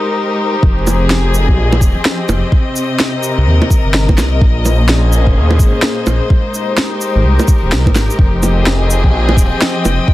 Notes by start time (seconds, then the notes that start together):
Already playing: G#3 D#4 G4 A#4 C5
0.63 F1 F3, kick
0.80 G#4
0.87 C4, low bongo, shaker
1.10 snare
1.34 shaker
1.42 D#5
1.48 C2, kick
1.57 A#1
1.73 low bongo
1.81 D#1, kick, shaker
2.05 snare
2.28 F1, low bongo, shaker
2.52 C3, kick
2.76 shaker
3.00 snare
3.18 A#4
3.23 shaker
3.38 C2
3.47 D#2
3.62 low bongo
3.70 kick, shaker
3.85 G1
3.94 snare
4.09 kick, low bongo
4.17 C2, snare, low bongo, shaker
4.41 A#1 A#2, kick
4.60 A#3
4.65 C5, low bongo, shaker
4.71 C#4
4.89 G#4, snare
5.13 shaker
5.27 F1, kick
5.36 D#2
5.51 low bongo
5.59 G#1, kick, shaker
5.82 snare
6.06 A#1, low bongo, shaker
6.30 G#3, kick
6.41 D#4
6.54 shaker
6.59 G4
6.78 snare
6.86 A#4
7.01 shaker
7.15 G#1
7.24 C2
7.40 low bongo, shaker
7.48 kick, shaker
7.63 D#1
7.72 C2, snare, shaker
7.86 G#1, kick, low bongo
7.95 G#1, snare, low bongo, shaker
8.10 shaker
8.19 F1 F3 G5, kick
8.28 C4
8.43 D#5, low bongo, cabasa, shaker
8.52 G#4
8.67 snare
8.91 cabasa, shaker
9.04 C2, kick
9.14 A#1
9.29 low bongo
9.37 D#1, kick, cabasa, shaker
9.62 snare
9.85 F1, low bongo, cabasa, shaker
10.08 C3, kick